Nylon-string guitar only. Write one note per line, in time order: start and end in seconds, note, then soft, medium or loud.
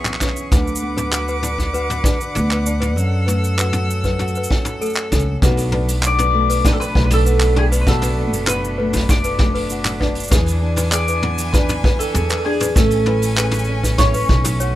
0.00 0.52 E3 medium
0.00 0.82 B3 medium
0.00 0.20 C#4 medium
0.00 0.58 G#4 medium
0.21 0.58 C#4 medium
0.52 2.97 D3 medium
0.82 2.35 B3 medium
1.12 1.74 F#4 medium
1.43 2.03 D4 medium
1.74 3.58 F#4 medium
2.04 2.65 D4 medium
2.36 3.03 B3 medium
2.66 3.03 D4 medium
2.96 5.41 F#2 medium
3.27 4.81 A3 medium
3.58 4.19 F#4 medium
3.89 4.49 C#4 medium
4.19 5.42 F#4 medium
4.50 5.11 C#4 medium
4.81 6.34 A3 medium
5.12 5.48 C#4 medium
5.42 7.86 B2 medium
5.42 6.03 F#4 medium
5.73 6.64 D4 medium
6.04 7.25 F#4 medium
6.34 6.94 A3 medium
6.64 7.55 D4 medium
6.95 8.78 A3 medium
7.26 7.86 F#4 medium
7.56 8.17 D4 medium
7.87 10.32 B2 medium
7.87 8.48 F#4 medium
8.18 9.09 D4 medium
8.49 9.70 F#4 medium
8.80 9.40 A3 medium
9.10 10.01 D4 medium
9.41 10.38 A3 medium
9.71 10.32 F#4 medium
10.02 10.62 D4 medium
10.32 12.76 E3 medium
10.32 10.92 G#4 medium
10.62 11.53 D4 medium
10.92 12.15 G#4 medium
11.23 11.82 B3 medium
11.54 12.44 D4 medium
11.84 12.82 B3 medium
12.16 12.80 G#4 medium
12.46 12.82 D4 medium
12.77 14.75 A3 medium
13.07 13.99 E4 medium
13.38 14.60 G#4 medium
13.69 14.30 C#4 medium
14.00 14.75 E4 medium
14.31 14.75 C#4 medium
14.61 14.75 F#4 medium